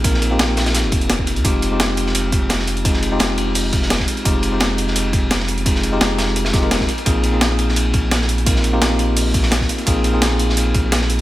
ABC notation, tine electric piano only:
X:1
M:4/4
L:1/16
Q:1/4=171
K:Cphr
V:1 name="Tine electric piano"
[B,CEFB] z2 [B,CEFG] z12 | [A,CEFG]3 [A,CEFG]12- [A,CEFG] | [A,CEFA] z2 [A,CEFG] z12 | [A,CEFG]3 [A,CEFG]12- [A,CEFG] |
[A,CEFA] z2 [A,CEFG] z6 [A,CEFG] [A,CEFB]3 z2 | [B,CEFA]3 [B,CEFA]12- [B,CEFA] | [B,CEFB] z2 [B,CEFG] z12 | [B,CEFA]3 [B,CEFA]12- [B,CEFA] |]